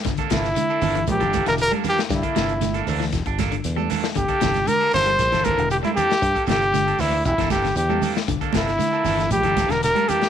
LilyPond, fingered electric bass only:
\new Staff \with { instrumentName = "Fingered electric bass" } { \clef bass \time 4/4 \key g \dorian \tempo 4 = 117 g,,16 r16 g,,8 r8 g,,8 bes,,16 g,,8 e,,8 r8. | g,16 r16 g,,4 d,8 e,,16 g,,8. e,8 r8 | g,,16 r16 g,,8 r8 g,,8 bes,,16 g,,8 e,,8 r8. | g,16 r16 g,,4 d,8 e,,16 g,,8. e,8 r8 |
g,,16 r16 g,,8 r8 g,,8 bes,,16 g,,8 e,,8 r8. | }